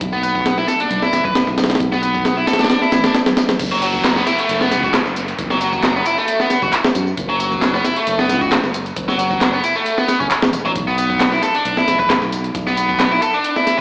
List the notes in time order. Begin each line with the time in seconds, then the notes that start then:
0.01 B1, kick, closed hi-hat, tambourine
0.13 B3, tambourine, high conga
0.23 B3, closed hi-hat, tambourine
0.35 kick, tambourine
0.46 snare, closed hi-hat, tambourine
0.58 E4, snare, tambourine
0.68 A4, snare, closed hi-hat, tambourine
0.80 D4, closed hi-hat, tambourine, muted conga, high conga
0.91 B1, closed hi-hat, tambourine, low conga
1.02 E4, snare, tambourine
1.13 F#1, snare, closed hi-hat, tambourine
1.25 B4, kick, tambourine, low conga
1.35 snare, closed hi-hat, tambourine
1.47 B1, snare, tambourine
1.58 snare, closed hi-hat, tambourine
1.64 snare, closed hi-hat
1.70 snare, closed hi-hat, tambourine
1.75 snare, closed hi-hat
1.80 B1, kick, closed hi-hat, tambourine
1.92 B3, snare, tambourine, muted conga, high conga
2.03 B3, closed hi-hat, tambourine
2.15 kick, tambourine
2.25 snare, closed hi-hat, tambourine
2.37 E4, tambourine
2.47 A4, snare, closed hi-hat, tambourine
2.53 snare, closed hi-hat
2.59 D4, snare, closed hi-hat, tambourine, muted conga, high conga
2.64 snare, closed hi-hat
2.70 snare, closed hi-hat, tambourine
2.82 E4, snare, tambourine
2.92 A1 E4, snare, closed hi-hat, tambourine
3.04 D4, snare, closed hi-hat, tambourine
3.15 snare, closed hi-hat, tambourine
3.26 snare, closed hi-hat, tambourine, low conga
3.37 snare, closed hi-hat, tambourine
3.49 snare, closed hi-hat, tambourine, low conga
3.59 F#1, kick, closed hi-hat, crash, tambourine, downlifter
3.72 F#3, tambourine
3.82 F#3, closed hi-hat, tambourine
3.94 kick, tambourine
4.04 snare, clap, closed hi-hat, tambourine
4.16 B3, snare, tambourine
4.27 E4, snare, closed hi-hat, tambourine
4.39 A3, closed hi-hat, tambourine
4.49 F#1, closed hi-hat, tambourine
4.61 B3, snare, tambourine
4.71 C#2, snare, closed hi-hat, tambourine
4.83 F#4, kick, tambourine
4.94 snare, clap, closed hi-hat, tambourine
5.06 F#1, snare, tambourine
5.16 closed hi-hat, tambourine
5.28 closed hi-hat, tambourine
5.39 F#1, kick, closed hi-hat, tambourine
5.50 F#3, snare, tambourine
5.61 F#3, closed hi-hat, tambourine
5.73 kick, tambourine
5.83 snare, clap, closed hi-hat, tambourine
5.95 B3, tambourine
6.06 E4, closed hi-hat, tambourine
6.18 A3, tambourine
6.28 closed hi-hat, tambourine
6.40 B3, snare, tambourine
6.50 snare, closed hi-hat, tambourine
6.62 F#1 F#4, kick, tambourine
6.73 clap, closed hi-hat, tambourine
6.84 snare, tambourine
6.95 F#2, closed hi-hat, tambourine
7.07 tambourine
7.17 F#1, kick, closed hi-hat, tambourine
7.29 F#3, tambourine
7.40 F#3, closed hi-hat, tambourine
7.52 kick, tambourine
7.62 snare, clap, closed hi-hat, tambourine
7.74 B3, snare, tambourine
7.85 E4, snare, closed hi-hat, tambourine
7.96 A3, closed hi-hat, tambourine
8.07 F#1, closed hi-hat, tambourine
8.19 B3, snare, tambourine
8.29 C#2, snare, closed hi-hat, tambourine
8.41 F#4, kick, tambourine
8.52 snare, clap, closed hi-hat, tambourine
8.64 F#1, snare, tambourine
8.74 closed hi-hat, tambourine
8.86 closed hi-hat, tambourine
8.96 F#1, kick, closed hi-hat, tambourine
9.08 F#3, snare, tambourine
9.19 F#3, closed hi-hat, tambourine
9.31 kick, tambourine
9.41 snare, clap, closed hi-hat, tambourine
9.53 B3, tambourine
9.64 E4, closed hi-hat, tambourine
9.76 A3, tambourine
9.86 closed hi-hat, tambourine
9.98 B3, snare, tambourine
10.08 B3, snare, closed hi-hat, tambourine
10.20 F#1 C#4, kick, tambourine
10.31 clap, closed hi-hat, tambourine
10.42 E1, snare, tambourine
10.53 E1, closed hi-hat, tambourine
10.65 A1 F#3, tambourine
10.76 B1, kick, closed hi-hat, tambourine
10.87 B3, tambourine
10.98 B3, closed hi-hat, tambourine
11.10 kick, tambourine
11.20 snare, clap, closed hi-hat, tambourine
11.32 E4, snare, tambourine
11.43 A4, snare, closed hi-hat, tambourine
11.55 D4, closed hi-hat, tambourine
11.65 B1, closed hi-hat, tambourine
11.77 E4, snare, tambourine
11.87 F#1, snare, closed hi-hat, tambourine
11.99 B4, kick, tambourine
12.10 snare, clap, closed hi-hat, tambourine
12.22 B1, snare, tambourine
12.32 closed hi-hat, tambourine
12.44 closed hi-hat, tambourine
12.55 B1, kick, closed hi-hat, tambourine
12.67 B3, snare, tambourine
12.77 B3, closed hi-hat, tambourine
12.89 kick, tambourine
13.00 snare, clap, closed hi-hat, tambourine
13.11 E4, tambourine
13.22 A4, closed hi-hat, tambourine
13.34 D4, tambourine
13.44 closed hi-hat, tambourine
13.56 E4, snare, tambourine
13.67 snare, closed hi-hat, tambourine